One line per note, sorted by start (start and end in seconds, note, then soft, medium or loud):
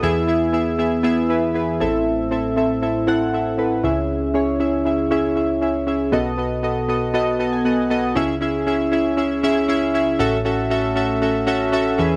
0.03 1.77 E2 medium
0.03 1.77 E3 medium
0.03 0.21 B3 medium
0.03 0.21 E4 medium
0.03 0.21 G#4 medium
0.03 0.22 E5 loud
0.27 0.46 B3 medium
0.27 0.47 E4 medium
0.27 0.47 G#4 medium
0.27 0.47 E5 medium
0.53 0.72 B3 medium
0.53 0.72 E4 medium
0.53 0.72 G#4 medium
0.53 0.72 E5 medium
0.78 0.97 B3 medium
0.78 0.97 E4 medium
0.78 0.97 G#4 medium
0.78 0.98 E5 medium
1.03 1.22 B3 loud
1.03 1.23 E4 medium
1.03 1.23 G#4 medium
1.03 1.23 E5 loud
1.29 1.48 B3 medium
1.29 1.48 E4 medium
1.29 1.48 G#4 medium
1.29 1.48 B4 medium
1.54 1.73 B3 medium
1.54 1.73 E4 medium
1.54 1.74 G#4 medium
1.54 1.74 B4 medium
1.80 3.80 A1 medium
1.80 3.80 A2 medium
1.80 2.21 C4 medium
1.80 2.21 E4 medium
1.80 2.22 A4 medium
1.80 2.22 E5 medium
2.31 2.50 C4 medium
2.31 2.50 E4 medium
2.31 2.50 A4 medium
2.31 2.50 E5 medium
2.56 2.75 C4 medium
2.56 2.75 E4 medium
2.56 2.76 A4 medium
2.56 2.76 E5 medium
2.82 3.01 C4 medium
2.82 3.01 E4 medium
2.82 3.01 A4 medium
2.82 3.01 E5 medium
3.07 3.26 C4 medium
3.07 3.26 E4 medium
3.07 3.26 A4 medium
3.07 3.26 F#5 loud
3.33 3.52 C4 medium
3.33 3.52 E4 medium
3.33 3.52 A4 medium
3.33 3.52 E5 medium
3.57 3.77 C4 medium
3.57 3.77 E4 medium
3.57 3.77 A4 medium
3.57 3.77 B4 medium
3.83 5.83 C#2 medium
3.83 5.84 C#3 medium
3.83 4.25 C#4 medium
3.83 4.25 E4 medium
3.83 4.25 G#4 medium
3.83 4.25 E5 medium
4.34 4.53 C#4 medium
4.34 4.53 E4 medium
4.34 4.53 G#4 medium
4.34 4.53 C#5 medium
4.59 4.78 C#4 medium
4.59 4.79 E4 medium
4.59 4.79 G#4 medium
4.59 4.79 E5 medium
4.85 5.04 C#4 medium
4.85 5.04 E4 medium
4.85 5.04 G#4 medium
4.85 5.05 E5 medium
5.11 5.29 C#4 loud
5.11 5.30 E4 medium
5.11 5.30 G#4 medium
5.11 5.30 E5 loud
5.36 5.55 C#4 medium
5.36 5.55 E4 medium
5.36 5.55 G#4 medium
5.36 5.55 E5 medium
5.61 5.80 C#4 medium
5.61 5.80 E4 medium
5.61 5.81 G#4 medium
5.61 5.81 E5 medium
5.87 6.06 C#4 medium
5.87 6.06 E4 medium
5.87 6.06 G#4 medium
5.87 6.06 E5 medium
6.12 8.12 B1 medium
6.12 8.12 B2 medium
6.12 6.31 B3 loud
6.12 6.31 F#4 medium
6.12 6.31 A4 medium
6.12 6.31 D#5 loud
6.38 6.56 B3 medium
6.38 6.57 F#4 medium
6.38 6.57 A4 medium
6.38 6.57 D#5 medium
6.63 6.82 B3 medium
6.63 6.82 F#4 medium
6.63 6.82 A4 medium
6.63 6.82 D#5 medium
6.88 7.07 B3 medium
6.88 7.07 F#4 medium
6.88 7.08 A4 medium
6.88 7.08 D#5 medium
7.14 7.33 B3 loud
7.14 7.33 F#4 medium
7.14 7.33 A4 medium
7.14 7.33 D#5 loud
7.39 7.58 B3 medium
7.39 7.58 F#4 medium
7.39 7.59 A4 medium
7.39 7.59 D#5 medium
7.39 7.52 A5 medium
7.53 7.65 G#5 medium
7.65 7.83 B3 medium
7.65 7.84 F#4 medium
7.65 7.84 A4 medium
7.65 7.84 D#5 medium
7.65 7.89 F#5 medium
7.90 8.09 B3 medium
7.90 8.09 F#4 medium
7.90 8.09 A4 medium
7.90 8.09 D#5 medium
8.15 10.16 C#2 medium
8.15 10.16 C#3 medium
8.15 8.34 C#4 loud
8.15 8.35 E4 medium
8.15 8.35 G#4 medium
8.15 8.35 E5 loud
8.41 8.60 C#4 medium
8.41 8.60 E4 medium
8.41 8.60 G#4 medium
8.41 8.60 E5 medium
8.67 8.85 C#4 medium
8.67 8.85 E4 medium
8.67 8.86 G#4 medium
8.67 8.86 E5 medium
8.92 9.11 C#4 medium
8.92 9.11 E4 medium
8.92 9.11 G#4 medium
8.92 9.11 E5 medium
9.17 9.36 C#4 medium
9.17 9.36 E4 medium
9.17 9.36 G#4 medium
9.17 9.37 E5 medium
9.43 9.62 C#4 loud
9.43 9.62 E4 medium
9.43 9.62 G#4 medium
9.43 9.62 E5 loud
9.68 9.87 C#4 loud
9.68 9.87 E4 medium
9.68 9.88 G#4 medium
9.68 9.88 E5 loud
9.94 10.13 C#4 medium
9.94 10.13 E4 medium
9.94 10.13 G#4 medium
9.94 10.13 E5 medium
10.19 11.94 A1 medium
10.19 11.94 A2 medium
10.19 10.38 C#4 loud
10.19 10.38 F#4 medium
10.19 10.38 A4 medium
10.19 10.38 E5 loud
10.45 10.63 C#4 medium
10.45 10.64 F#4 medium
10.45 10.64 A4 medium
10.45 10.64 E5 medium
10.70 10.89 C#4 medium
10.70 10.89 F#4 medium
10.70 10.89 A4 medium
10.70 10.89 E5 medium
10.96 11.14 C#4 medium
10.96 11.14 F#4 medium
10.96 11.15 A4 medium
10.96 11.15 E5 medium
11.22 11.40 C#4 medium
11.22 11.40 F#4 medium
11.22 11.40 A4 medium
11.22 11.41 E5 medium
11.47 11.65 C#4 loud
11.47 11.65 F#4 medium
11.47 11.66 A4 medium
11.47 11.66 E5 loud
11.72 11.91 C#4 loud
11.72 11.91 F#4 medium
11.72 11.91 A4 medium
11.72 11.91 E5 loud
11.98 12.16 E2 medium
11.98 12.16 E3 medium
11.98 12.16 C#4 medium
11.98 12.16 G#4 medium
11.98 12.16 B4 medium
11.98 12.16 E5 medium